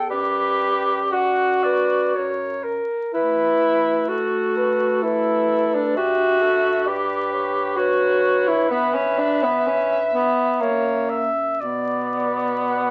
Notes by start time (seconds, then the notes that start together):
Already playing: E2
0.09 F#2 G4 B4 D5
1.12 F#4 D5 F#5
1.63 B4 D5
2.14 F#2 A#4 C#5
2.63 A#4
3.12 D2 E4 B4
4.08 F#4 A4
4.57 B4
5.03 E4 B4
5.75 D4
5.96 G2 F#4 G4 E5
6.42 A4
6.86 G4 B4 D5
7.33 C#5
7.77 F#4 B4 C#5
8.47 E4
8.68 B3 B4 E5
8.94 C#4
9.18 D4
9.43 B3
9.67 C#4
10.14 B3
10.60 F#2 A#3 C#5
11.09 E5
11.60 B2 B3 D5
12.69 F#5